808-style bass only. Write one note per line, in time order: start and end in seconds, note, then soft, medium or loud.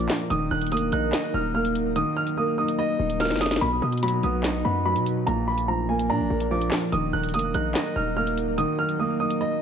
0.30 0.50 D#1 loud
0.51 0.73 D#1 loud
0.72 0.84 F1 loud
0.82 0.92 D#1 loud
0.92 1.12 A#1 loud
1.34 2.03 D#1 loud
2.99 3.32 D#1 loud
3.30 3.60 F#1 loud
3.61 3.81 B1 loud
3.82 4.22 B2 loud
4.23 4.63 B1 loud
4.65 4.97 F#2 loud
4.96 5.25 B2 loud
5.27 6.11 A#1 loud
6.10 6.22 A#2 loud
6.20 6.30 A#1 loud
6.30 6.70 A#1 loud
6.92 7.12 D#1 loud
7.13 7.35 D#1 loud
7.34 7.46 F1 loud
7.44 7.54 D#1 loud
7.54 7.74 A#1 loud
7.96 8.65 D#1 loud